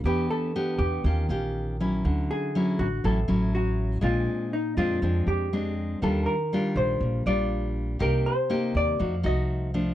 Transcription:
<<
  \new Staff \with { instrumentName = "Hollow-body jazz guitar" } { \time 4/4 \key bes \major \tempo 4 = 121 g'8 a'4 g'2 r8 | r8 aes'4 fis'8 a'4 fis'4 | f'4 ees'8 f'4 g'4 r8 | a'8 bes'4 c''4 d''4. |
bes'8 c''4 d''4 ees''4. | }
  \new Staff \with { instrumentName = "Nylon-string guitar" } { \time 4/4 \key bes \major << { <b d' g'>4 <b d' g'>4 <des' f' g'>8 <des' f' g'>4 <ges des' e'>8~ | <ges des' e'>4 <fis cis' e'>8 r8 <fis cis' e'>8 <fis cis' e'>4. | <aes c' d'>4 r8 <aes c' d'>8 <aes c' d'>4 <aes c' d'>4 | <g d' f'>8 r8 <g d' f'>4. <g d' f'>4. |
<bes ees' g'>8 r8 <bes ees' g'>4 <a ees' ges'>8 <a ees' ges'>4 <f a d'>8 | } \\ { e2 ees2 | d2 a,2 | bes,2 f2 | ees2 bes,2 |
c2 f2 | } >> }
  \new Staff \with { instrumentName = "Upright bass" } { \clef bass \time 4/4 \key bes \major e,8 r4 e,8 ees,8 bes,,4. | d,8 r4 a,,8 a,,8 a,,4. | bes,,8 r4 f,8 f,8 f,4. | ees,8 r4 bes,,8 bes,,8 bes,,4. |
c,8 r4 ees,8 f,8 c,4. | }
>>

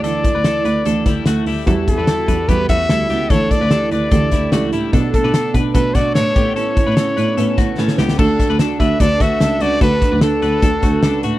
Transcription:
<<
  \new Staff \with { instrumentName = "Trumpet" } { \time 4/4 \key d \major \tempo 4 = 147 d''2. r4 | r8 a'4. b'8 e''4. | cis''8 d''4 d''2 r8 | r8 a'4 r8 b'8 d''8 cis''4 |
cis''2. r4 | a'4 r8 e''8 d''8 e''4 d''8 | b'4 a'2~ a'8 r8 | }
  \new Staff \with { instrumentName = "Synth keys" } { \time 4/4 \key d \major r1 | <e' fis' g'>8 r8 <e' fis' g'>8 r8 <e' fis' a'>8 r8 <e' fis' a'>8 r8 | <d' e' a'>8 r8 <d' e' g'>8 r8 <d' e' g'>8 r8 <d' e' g'>8 r8 | <b d' a'>8 r8 <b d' a'>8 r8 <b d' fis'>8 r8 <b d' b'>8 <b cis' a'>8~ |
<b cis' a'>8 r8 <b cis' a'>8 r8 <b cis' b'>8 r8 <b cis' a'>8 r8 | <d' fis' a'>8 r8 <d' fis' a'>8 <d' fis' a'>8 <d' fis' b'>8 r8 <d' fis' a'>8 r8 | <d' fis' b'>8 r8 <d' fis' a'>8 <d' fis' b'>8 <d' fis' a'>8 r8 <d' fis' b'>8 r8 | }
  \new Staff \with { instrumentName = "Clean electric guitar" } { \time 4/4 \key d \major <d' a'>8. <d' b'>16 <d' a'>8 <d' b'>8 <d' a'>8 <g e'>8 <a fis'>8 <g e'>8 | <e' a'>8. <d' b'>16 <e' a'>8 <d' b'>8 <b g'>8 <a fis'>8 <e' a'>8 <b g'>8 | <d' a'>8. <d' b'>16 <d' a'>8 <d' b'>8 <d' a'>8 <g e'>8 <a fis'>8 <g e'>8 | <d' a'>8. <d' b'>16 <d' a'>8 <d' b'>8 <d' a'>8 <a fis'>8 <d' a'>8 <b g'>8 |
<cis' a'>8. <d' b'>16 <cis' a'>8 <d' b'>8 <cis' a'>8 <a fis'>8 <cis' a'>8 <b g'>8 | <d' a'>8. <d' b'>16 <d' a'>8 <d' b'>8 <d' a'>8 <a fis'>8 <d' a'>8 <a fis'>8 | <d' a'>8. <d' b'>16 <d' a'>8 <d' b'>8 <d' a'>8 <a fis'>8 <d' a'>8 <a fis'>8 | }
  \new Staff \with { instrumentName = "Steel-string acoustic guitar" } { \time 4/4 \key d \major <d e a e' a'>8 <a e' a'>8 <e a e' a'>8 <a e' a'>8 <d e a e' a'>8 <a e' a'>8 <e a e' a'>8 <a e' a'>8 | <e g b e' fis'>8 <b e' fis'>8 <g b e' fis'>8 <b e' fis'>8 <e g b e' fis'>8 <b e' fis'>8 <g b e' fis'>8 <b e' fis'>8 | <d e a e' a'>8 <a e' a'>8 <e a e' a'>8 <a e' a'>8 <d e a e' a'>8 <a e'>8 <e a e' a'>8 <a e' a'>8 | <b, fis a d' a'>8 <a d' a'>8 <fis a d'>8 <a d' a'>8 <b, fis a d' a'>8 <a d' a'>8 <fis a d' a'>8 <cis' e' b'>8 |
<a cis' e' b'>8 <cis' e' b'>8 <a cis' e' b'>8 <cis' e' b'>8 <a cis' e' b'>8 <cis' e' b'>8 <a cis' e' b'>8 <cis' e' b'>8 | <d a d' fis' a'>8 <d' fis' a'>8 <a d' fis' a'>8 <d' fis' a'>8 <d a d' fis' a'>8 <d' fis' a'>8 <a d' fis' a'>8 <d' fis' a'>8 | <d a d' fis' a'>8 <d' fis' a'>8 <a d' fis' a'>8 <d' fis' a'>8 <d a d' fis' a'>8 <d' fis' a'>8 <a d' fis' a'>8 <d' fis' a'>8 | }
  \new Staff \with { instrumentName = "Cello" } { \clef bass \time 4/4 \key d \major d,8 r16 d,8 r16 d,8 d,8 d,8 d,8 d,8 | e,8 r16 e,8 r16 e,8 e,8 e,8 d,8 cis,8 | d,8 r16 d,8 r16 d,8 d,8 d,8 cis,8 a,8 | b,8 r16 b,8 r16 b,8 b,8 b,8 a,8 a,8~ |
a,8 r16 a,8 r16 a,8 a,8 a,8 a,8 cis,8 | d,8 r16 d,8 r16 d,8 d,8 d,8 cis,8 cis,8 | d,8 r16 d,8 r16 d,8 d,8 d,8 cis,8 a,8 | }
  \new DrumStaff \with { instrumentName = "Drums" } \drummode { \time 4/4 hh8 <hh bd>8 <hh sn>8 hh8 hh8 <hh bd sn>8 <hh sn>8 hho8 | <hh bd>8 <hh bd>8 <hh sn>8 <hh bd>8 <hh bd>8 <hh bd>8 <hh sn>8 hh8 | <hh bd>8 <hh bd>8 <hh sn>8 hh8 <hh bd>8 <hh bd sn>8 <hh sn>8 hh8 | <hh bd>8 <hh bd>8 <hh sn>8 <hh bd>8 <hh bd>8 <hh bd sn>8 <hh sn>8 <hh bd>8 |
hh8 <hh bd>8 <hh sn>8 hh8 hh8 <hh bd sn>8 sn16 sn16 sn16 sn16 | <cymc bd>8 <hh bd>8 <hh sn>8 <hh bd>8 <hh bd>8 <hh bd sn>8 <hh sn>8 hh8 | <hh bd>8 <hh bd>8 <hh sn>8 hh8 <hh bd>8 <hh bd>8 <hh sn>8 hh8 | }
>>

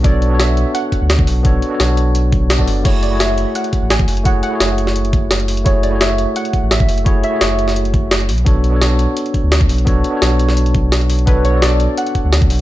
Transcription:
<<
  \new Staff \with { instrumentName = "Synth pluck" } { \time 4/4 \key fis \minor \tempo 4 = 171 d''4 e''4 fis''2~ | fis''2. r4 | cis''8 d''8 e''4 fis''4 gis''4 | fis''8 fis''4 r2 r8 |
cis''8 d''8 e''4 fis''4 e''4 | cis''8 e''4 r2 r8 | r1 | r1 |
b'8 cis''8 d''4 fis''2 | }
  \new Staff \with { instrumentName = "Tine electric piano" } { \time 4/4 \key fis \minor <b d' fis' a' cis''>8. <b d' fis' a' cis''>2.~ <b d' fis' a' cis''>16 | <b d' fis' a' cis''>8. <b d' fis' a' cis''>2~ <b d' fis' a' cis''>8 <b d' fis' a' d''>16 r8 | <a e' fis' gis' cis''>8. <a e' fis' gis' cis''>2.~ <a e' fis' gis' cis''>16 | <a e' fis' gis' cis''>8. <a e' fis' gis' cis''>2.~ <a e' fis' gis' cis''>16 |
<a e' fis' gis' cis''>8. <a e' fis' gis' cis''>2.~ <a e' fis' gis' cis''>16 | <a e' fis' gis' cis''>8. <a e' fis' gis' cis''>2~ <a e' fis' gis' cis''>8. r8 | <b d' fis' a' cis''>8. <b d' fis' a' cis''>2.~ <b d' fis' a' cis''>16 | <b d' fis' a' cis''>8. <b d' fis' a' cis''>2.~ <b d' fis' a' cis''>16 |
<b d' fis' a' cis''>8. <b d' fis' a' d''>2.~ <b d' fis' a' d''>16 | }
  \new Staff \with { instrumentName = "Sub bass" } { \clef bass \time 4/4 \key fis \minor b,,4.~ b,,16 r4 d,8. b,,8~ | b,,8 r8 b,,2~ b,,8 fis,,8 | fis,,4.~ fis,,16 r4 a,,8. fis,,8~ | fis,,8 r8 fis,,2. |
fis,,4.~ fis,,16 r4 a,,8. fis,,8~ | fis,,8 r8 fis,,2~ fis,,8 b,,8 | b,,4.~ b,,16 r4 d,8. b,,8~ | b,,8 r8 b,,2. |
b,,4.~ b,,16 r4 d,8. b,,8 | }
  \new DrumStaff \with { instrumentName = "Drums" } \drummode { \time 4/4 <hh bd>8 hh8 <hh sn>8 hh8 hh8 <hh bd>8 <hh sn>16 bd16 hho8 | <hh bd>8 hh8 <hh sn>8 hh8 hh8 <hh bd>8 <hh sn>16 bd16 hho8 | <cymc hh bd>8 hh8 <hh sn>8 hh8 hh16 hh16 <hh bd>8 <hh sn>16 <hh bd>16 hho16 hh16 | <hh bd>8 hh8 <hh sn>8 hh16 sn16 hh16 hh16 <hh bd>8 <hh sn>16 hh16 hho16 hh16 |
<hh bd>8 hh8 <hh sn>8 hh8 hh16 hh16 <hh bd>8 <hh sn>16 <hh bd>16 hho16 hh16 | <hh bd>8 hh8 <hh sn>8 hh16 sn16 hh16 hh16 <hh bd>8 <hh sn>16 hh16 hho16 hh16 | <hh bd>8 hh8 <hh sn>8 hh8 hh16 hh16 <hh bd>8 <hh sn>16 <hh bd>16 hho16 hh16 | <hh bd>8 hh8 <hh sn>8 hh16 sn16 hh16 hh16 <hh bd>8 <hh sn>16 hh16 hho16 hh16 |
<hh bd>8 hh8 <hh sn>8 hh8 hh16 hh16 <hh bd>8 <hh sn>16 <hh bd>16 hho8 | }
>>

